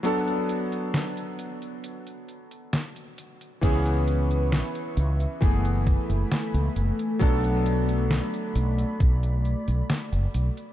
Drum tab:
CC |----------------|x---------------|----------------|
HH |xxxxxxxxxxxxxxxx|xxxxxxxxxxxxxxxx|xxxxxxxxxxxxxxxx|
SD |----o-------o---|----o-------o---|----o-------o---|
BD |----------------|o-------o-o-----|o-------o-------|